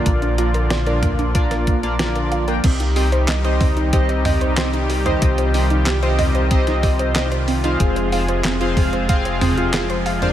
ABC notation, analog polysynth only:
X:1
M:4/4
L:1/16
Q:1/4=93
K:Cm
V:1 name="Analog polysynth"
[B,DFBd]2 [B,DFBd] z2 [B,DFBd]3 [B,DFBd]3 [B,DFBd] [B,DFBd]3 [B,DFBg] | z2 [CEGce] z2 [CEGce]3 [CEGce]4 [CEGce] z2 [CEGce]- | [CEGce]2 [CEGce] z2 [CEGce]3 [CEGce]4 [CEGce] z2 [CFAcf]- | [CFAcf]2 [CFAcf] z2 [CFAcf]3 [CFAcf]4 [CFAcf] z2 [DFBcd] |]